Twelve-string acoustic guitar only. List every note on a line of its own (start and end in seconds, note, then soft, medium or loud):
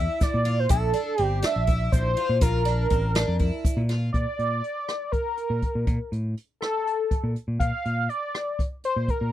0.00 0.37 E4 medium
0.45 0.65 F4 medium
0.69 0.90 E4 medium
0.94 1.14 D4 medium
1.18 1.38 C4 medium
1.43 1.63 D4 medium
1.67 2.08 E4 medium
2.17 2.37 F4 medium
2.41 2.62 F4 medium
2.65 2.86 D4 medium
2.90 3.11 C4 medium
3.15 3.36 D4 medium
3.40 3.80 E4 medium
3.89 4.10 F4 medium